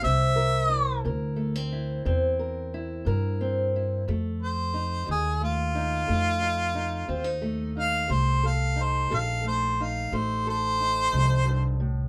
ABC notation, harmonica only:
X:1
M:12/8
L:1/8
Q:3/8=60
K:Fmix
V:1 name="Harmonica"
=e3 z8 z | z c2 _A F6 z f | c f c f c f c c4 z |]